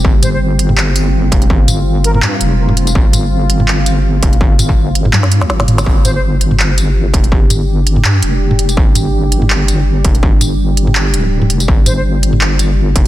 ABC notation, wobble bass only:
X:1
M:4/4
L:1/16
Q:"Swing 16ths" 1/4=165
K:Cm
V:1 name="Wobble bass" clef=bass
G,,,12- G,,,2 F,,,2 | G,,,8 G,,2 F,,,6 | G,,,12- G,,,2 F,,,2 | G,,,8 G,,3 D,, G,,,4 |
G,,,12- G,,,2 F,,,2 | G,,,8 G,,2 F,,,6 | G,,,12- G,,,2 F,,,2 | G,,,8- G,,,2 D,,,4 F,,,2 |
G,,,12- G,,,2 F,,,2 |]